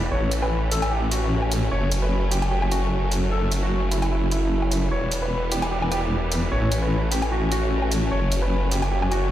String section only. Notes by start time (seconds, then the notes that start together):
Already playing: E3 B3
0.12 A3 C#4
1.71 F#3
4.92 E3 G3 B3
6.52 A3 C#4
8.12 F#3